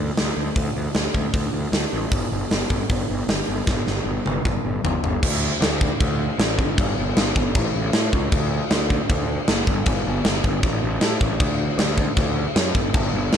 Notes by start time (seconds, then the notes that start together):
0.17 D2, snare, open hi-hat
0.37 D2
0.56 D2, kick, open hi-hat
0.75 D2
0.94 D2, snare, open hi-hat
1.14 D2, kick
1.34 D2, kick, open hi-hat
1.53 D2
1.72 D2, snare, open hi-hat
1.93 A1
2.11 G1, kick, open hi-hat
2.32 G1
2.51 G1, snare, open hi-hat
2.70 G1, kick
2.90 G1, kick, open hi-hat
3.10 G1
3.28 G1, snare, open hi-hat
3.49 G1
3.67 G1, kick, snare
3.87 G1, snare
4.06 G1
4.26 G1, high tom
4.45 G1, kick, mid tom
4.65 G1
4.84 G1, floor tom
5.03 G1, floor tom
5.23 D2, kick, crash
5.61 D2, snare, crash
5.81 kick
6.00 D2, kick, crash
6.38 A1, snare, crash
6.59 G1, kick
6.78 G1, kick, crash
6.98 G1
7.16 G1, snare, crash
7.36 G1, kick
7.55 A1, kick, crash
7.74 A1
7.93 A2, snare, crash
8.13 C#2, kick
8.32 D2, kick, crash
8.71 D2, snare, crash
8.90 kick
9.09 D2, kick, crash
9.48 F#1, snare, crash
9.67 G1, kick
9.86 G1, kick, crash
10.06 G1
10.25 G1, snare, crash
10.44 G1, kick
10.63 A1, kick, crash
10.83 A1
11.01 A2, snare, crash
11.21 A1, kick
11.40 D2, kick, crash
11.78 D2, snare, crash
11.98 kick
12.17 D2, kick, crash
12.56 F#2, snare, crash
12.75 G1, kick
12.94 G1, kick, crash
13.14 G1
13.32 G1, snare, crash